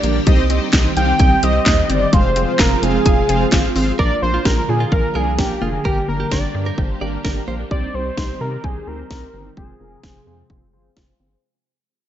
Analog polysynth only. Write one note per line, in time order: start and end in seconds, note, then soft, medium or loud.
0.04 0.20 A#3 medium
0.04 0.20 D4 medium
0.04 0.20 G4 medium
0.04 0.20 A#4 medium
0.04 0.20 D5 medium
0.27 0.43 C4 loud
0.27 0.43 D#4 loud
0.27 0.43 G4 loud
0.27 0.43 C5 loud
0.27 0.43 D#5 loud
0.50 0.67 C4 medium
0.50 0.67 D#4 medium
0.50 0.67 G4 medium
0.50 0.67 C5 medium
0.50 0.67 D#5 loud
0.73 0.90 C4 loud
0.73 0.90 D#4 medium
0.73 0.90 G4 medium
0.73 0.90 C5 medium
0.73 0.90 D#5 loud
0.97 1.13 C4 loud
0.97 1.13 D#4 medium
0.97 1.13 G4 medium
0.97 1.13 C5 loud
0.97 1.13 F5 loud
1.20 1.37 C4 medium
1.20 1.37 D#4 medium
1.20 1.37 G4 medium
1.20 1.37 C5 medium
1.20 1.37 D#5 medium
1.43 1.60 C4 loud
1.43 1.60 D#4 medium
1.43 1.60 G4 medium
1.43 1.60 C5 medium
1.43 1.60 D#5 loud
1.66 1.83 C4 medium
1.66 1.83 D#4 medium
1.66 1.83 G4 medium
1.66 1.83 C5 medium
1.66 1.83 D#5 medium
1.90 2.06 C4 medium
1.90 2.06 D#4 medium
1.90 2.06 G4 medium
1.90 2.06 C5 medium
1.90 2.06 D#5 medium
2.13 2.30 C4 loud
2.13 2.30 F4 medium
2.13 2.30 G#4 medium
2.13 2.30 C5 medium
2.13 2.30 F5 loud
2.36 2.53 C4 medium
2.36 2.53 F4 medium
2.36 2.53 G#4 medium
2.36 2.53 C5 medium
2.36 2.53 F5 medium
2.59 2.76 C4 medium
2.59 2.76 F4 medium
2.59 2.76 G#4 medium
2.59 2.76 C5 medium
2.59 2.76 F5 medium
2.83 2.99 C4 loud
2.83 2.99 F4 medium
2.83 2.99 G#4 medium
2.83 2.99 C5 medium
2.83 2.99 F5 loud
3.06 3.23 C4 medium
3.06 3.23 F4 medium
3.06 3.23 G#4 medium
3.06 3.23 C5 medium
3.06 3.23 F5 medium
3.29 3.46 C4 loud
3.29 3.46 F4 loud
3.29 3.46 G#4 medium
3.29 3.46 C5 medium
3.29 3.46 F5 loud
3.53 3.69 C4 medium
3.53 3.69 F4 medium
3.53 3.69 G#4 medium
3.53 3.69 C5 medium
3.53 3.69 F5 loud
3.76 3.92 C4 loud
3.76 3.92 F4 medium
3.76 3.92 G#4 medium
3.76 3.92 C5 medium
3.76 3.92 F5 loud
3.99 4.16 A#3 medium
3.99 4.16 D4 medium
3.99 4.16 F4 medium
3.99 4.16 A#4 loud
4.22 4.39 A#3 medium
4.22 4.39 D4 medium
4.22 4.39 F4 medium
4.22 4.39 A#4 medium
4.45 4.62 A#3 medium
4.45 4.62 D4 medium
4.45 4.62 F4 medium
4.45 4.62 G#4 medium
4.69 4.85 A#3 medium
4.69 4.85 D4 medium
4.69 4.85 F4 medium
4.69 4.85 A#4 medium
4.92 5.09 A#3 medium
4.92 5.09 D4 medium
4.92 5.09 F4 medium
4.92 5.09 A#4 medium
5.15 5.32 A#3 loud
5.15 5.32 D4 medium
5.15 5.32 F4 medium
5.15 5.32 A#4 loud
5.39 5.55 A#3 medium
5.39 5.55 D4 medium
5.39 5.55 F4 medium
5.39 5.55 A#4 loud
5.62 5.78 A#3 medium
5.62 5.79 D4 medium
5.62 5.79 F4 medium
5.62 5.79 A#4 medium
5.85 6.02 A#3 medium
5.85 6.02 D4 medium
5.85 6.02 G4 medium
5.85 6.02 A#4 loud
6.08 6.25 A#3 medium
6.08 6.25 D4 medium
6.08 6.25 G4 medium
6.08 6.25 A#4 medium
6.31 6.48 A#3 medium
6.31 6.48 D4 medium
6.31 6.48 G4 medium
6.31 6.48 A#4 medium
6.55 6.71 A#3 medium
6.55 6.71 D4 medium
6.55 6.71 G4 medium
6.55 6.71 A#4 medium
6.78 6.95 A#3 medium
6.78 6.95 D4 medium
6.78 6.95 G4 medium
6.78 6.95 C5 medium
7.01 7.18 A#3 loud
7.01 7.18 D4 loud
7.01 7.18 G4 loud
7.01 7.18 A#4 loud
7.24 7.41 A#3 loud
7.24 7.41 D4 loud
7.24 7.41 G4 loud
7.24 7.41 A#4 loud
7.48 7.64 A#3 loud
7.48 7.64 D4 medium
7.48 7.64 G4 medium
7.48 7.64 A#4 loud
7.71 7.88 C4 medium
7.71 7.88 D#4 medium
7.71 7.88 G4 medium
7.71 7.88 C5 loud
7.94 8.11 C4 medium
7.94 8.11 D#4 medium
7.94 8.11 G4 medium
7.94 8.11 C5 medium
8.17 8.34 C4 medium
8.17 8.34 D#4 medium
8.17 8.34 G4 medium
8.17 8.34 C5 medium
8.41 8.58 C4 medium
8.41 8.58 D#4 medium
8.41 8.58 G4 medium
8.41 8.58 D5 medium
8.64 8.81 C4 medium
8.64 8.81 D#4 medium
8.64 8.81 G4 medium
8.64 8.81 C5 medium
8.87 9.04 C4 loud
8.87 9.04 D#4 medium
8.87 9.04 G4 medium
8.87 9.04 C5 loud
9.10 9.27 C4 medium
9.10 9.27 D#4 medium
9.10 9.27 G4 medium
9.10 9.27 C5 loud
9.34 9.50 C4 medium
9.34 9.50 D#4 medium
9.34 9.50 G4 medium
9.34 9.50 C5 medium
9.57 9.74 C4 medium
9.57 9.74 F4 medium
9.57 9.74 G#4 medium
9.57 9.74 C5 loud
9.80 9.97 C4 medium
9.80 9.97 F4 medium
9.80 9.97 G#4 medium
9.80 9.97 A#4 medium
10.04 10.20 C4 medium
10.04 10.20 F4 medium
10.04 10.20 G#4 medium
10.04 10.20 C5 medium
10.27 10.43 C4 medium
10.27 10.43 F4 medium
10.27 10.43 G#4 medium
10.27 10.43 C5 loud
10.50 10.67 C4 medium
10.50 10.67 F4 medium
10.50 10.67 G#4 medium
10.50 10.67 C5 loud
10.73 10.90 C4 loud
10.73 10.90 F4 loud
10.73 10.90 G#4 loud
10.73 10.90 C5 loud
10.96 11.13 C4 loud
10.96 11.13 F4 loud
10.96 11.13 G#4 loud
10.96 11.13 C5 loud
11.20 11.37 C4 medium
11.20 11.37 G#4 medium
11.20 11.37 C5 loud